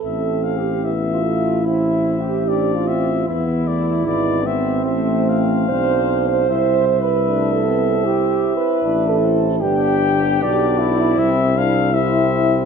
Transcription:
<<
  \new Staff \with { instrumentName = "Cornet" } { \time 4/4 \key a \minor \tempo 4 = 76 e''8 f''8 e''4 e''4 d''8 e''8 | e''8 d''8 d''8 e''8 e''8 f''4. | e''8 e''2. r8 | g''4 d''4 e''8 f''8 e''4 | }
  \new Staff \with { instrumentName = "French horn section" } { \time 4/4 \key a \minor \tuplet 3/2 { a'4 g'8~ g'8 f'4 e'4 g'8~ g'8 f'4 } | e'4. c'4. c''8. c''16~ | \tuplet 3/2 { c''4 b'8~ b'8 a'4 g'4 b'8~ b'8 a'4 } | g'4. e'4. r4 | }
  \new Staff \with { instrumentName = "Euphonium" } { \time 4/4 \key a \minor c'4 e'2 d'8 c'8 | b8 a8 gis8 b8 a4 c'4 | e'8 r8 d'8 c'8 e'2 | d'4 b4 c'8 d'8 e'4 | }
  \new Staff \with { instrumentName = "Trombone" } { \time 4/4 \key a \minor c'4 b8 a8 c'4 c'4 | b4 b4 c'4 d'4 | c'8 r8 a8 b8 c'4 d'8 c'8 | b4 d'4 c'4 c'4 | }
  \new Staff \with { instrumentName = "Tuba" } { \clef bass \time 4/4 \key a \minor a,,1 | e,4 gis,,4 a,,4 b,,4 | c,2~ c,8 r8 a,,4 | g,,4 b,,4 c,2 | }
>>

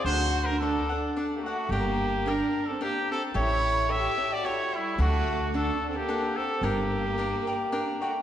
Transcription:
<<
  \new Staff \with { instrumentName = "Cavaquinho" } { \time 3/4 \key g \minor \tempo 4 = 110 <d' a' d'' fis''>4 <d' a' d'' fis''>8 <a' d'' fis''>8 <d' a' d'' fis''>8 <a' d'' fis''>8 | <d' bes' d'' g''>4 <d' bes' d'' g''>4 <d' bes' d'' g''>4 | <g' a' cis'' e''>4 <g' a' cis'' e''>8 <a' cis'' e''>8 <g' a' cis'' e''>4 | <d' a' d'' fis''>4 <d' a' d'' fis''>4 <d' a' d'' fis''>4 |
<d' bes' d'' g''>4 <d' bes' d'' g''>8 <bes' d'' g''>8 <d' bes' d'' g''>8 <bes' d'' g''>8 | }
  \new Staff \with { instrumentName = "Trumpet" } { \time 3/4 \key g \minor c''8. bes'16 a'4 r16. g'32 fis'8 | g'4 bes'8. a'16 g'8 a'8 | cis''4 e''8. d''16 cis''8 e'8 | fis'4 a'8~ a'32 a'32 g'8. a'8 |
g'2~ g'8 fis'8 | }
  \new Staff \with { instrumentName = "Violin section" } { \time 3/4 \key g \minor fis'8. d'16 d'4 r16. bes32 a8 | bes4 d'8. c'16 bes8 c'8 | e'4 g'8. fis'16 e'8 g8 | a4 d'8~ d'32 c'32 bes8. c'8 |
bes2~ bes8 a8 | }
  \new Staff \with { instrumentName = "Upright bass" } { \clef bass \time 3/4 \key g \minor d,2 r4 | g,,2 r4 | a,,2 r4 | d,2 r4 |
g,,2 r4 | }
>>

